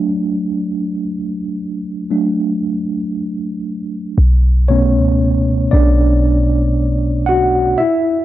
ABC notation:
X:1
M:4/4
L:1/16
Q:1/4=58
K:Bm
V:1 name="Tine electric piano"
z16 | z2 [Cc]4 [Dd]6 [Ff]2 [Ee]2 |]
V:2 name="Tine electric piano"
[F,A,D]4 z4 [F,A,D]2 z6 | z2 [B,,A,B,]12 z2 |]
V:3 name="808-style bass" clef=bass
z16 | B,,,3 C,,3 B,,,8 z2 |]